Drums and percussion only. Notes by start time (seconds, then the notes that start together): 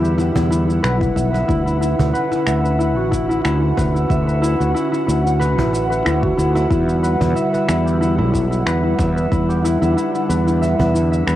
0.05 cabasa
0.18 cajon slap, cabasa
0.36 cajon bass, cabasa
0.51 cajon slap, cabasa
0.70 cabasa
0.84 finger snap, cabasa
1.01 kick, cabasa
1.16 kick, cabasa
1.34 cajon slap, cabasa
1.49 kick, cabasa
1.68 cabasa
1.83 cabasa
1.99 cajon bass, cabasa
2.15 cabasa
2.32 cajon slap, cabasa
2.47 finger snap, cabasa
2.65 cabasa
2.81 cabasa
3.12 kick, cabasa
3.31 cabasa
3.45 finger snap, cabasa
3.77 kick, cajon slap, cabasa
3.96 cabasa
4.10 kick, cabasa
4.29 cabasa
4.44 cabasa
4.61 cabasa
4.76 cabasa
4.94 cabasa
5.09 cabasa
5.27 cabasa
5.41 cajon slap, cabasa
5.58 cajon bass
5.73 cajon slap, cabasa
5.92 cabasa
6.06 finger snap, cabasa
6.23 kick
6.39 cabasa
6.56 cajon slap, cabasa
6.71 kick, cabasa
6.89 cabasa
7.04 cabasa
7.21 cajon bass, cabasa
7.37 cabasa
7.54 cajon slap, cabasa
7.69 finger snap, cabasa
7.88 cabasa
8.03 cabasa
8.34 kick, cabasa
8.53 cabasa
8.67 finger snap, cabasa
8.99 kick, cajon slap, cabasa
9.18 cabasa
9.32 kick, cabasa
9.50 cabasa
9.65 cabasa
9.83 cabasa
9.98 cabasa
10.15 cabasa
10.30 cabasa
10.48 cabasa
10.63 cajon slap, cabasa
10.79 cajon bass
10.95 cajon slap, cabasa
11.13 cabasa
11.27 finger snap, cabasa